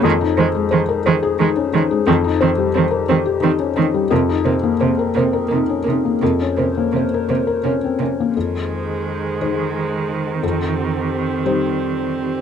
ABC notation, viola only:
X:1
M:6/8
L:1/8
Q:3/8=58
K:Fm
V:1 name="Viola"
A, A, A, A, A, A, | C C C C C C | B, B, B, B, B, B, | B, B, B, B, B, B, |
A,6 | C6 |]